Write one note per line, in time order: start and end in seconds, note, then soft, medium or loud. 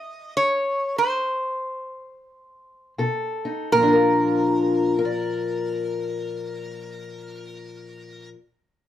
0.00 0.36 D#5 medium
0.37 0.98 C#5 medium
0.98 2.93 C5 medium
2.98 3.67 B2 medium
2.98 3.70 A4 medium
3.45 3.69 D#4 medium
3.72 8.33 A#2 medium
3.72 8.29 A#4 medium
3.77 8.35 F3 medium
3.82 4.98 D4 medium
3.88 5.05 F4 medium
3.92 4.99 A#4 medium
4.99 8.33 A#4 medium
5.05 8.36 D5 medium